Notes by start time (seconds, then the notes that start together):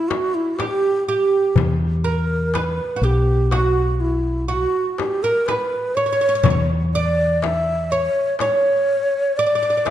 Already playing: E4
0.09 F#4, darbuka tek, frame drum
0.34 E4
0.59 G4, darbuka tek, frame drum
1.08 G4, darbuka ka
1.56 E2, darbuka dum, frame drum
2.04 A#4
2.54 B4, darbuka tek, frame drum
2.96 F#4
3.01 B1 G4
3.51 F#4, darbuka tek, frame drum
4.00 E4
4.48 F#4
4.98 G4, darbuka tek, frame drum
5.23 A#4
5.46 B4, darbuka tek, frame drum
5.95 C#5, darbuka ka
6.06 C#5
6.13 C#5
6.21 C#5
6.29 C#5
6.35 C#5
6.43 E2 C#5, darbuka dum, frame drum
6.50 C#5
6.94 D5
7.42 E5, darbuka tek, frame drum
7.91 C#5
8.39 C#5, darbuka tek, frame drum
9.37 D5
9.47 D5
9.55 D5
9.63 D5
9.70 D5
9.77 D5
9.85 D5 E5, darbuka tek, frame drum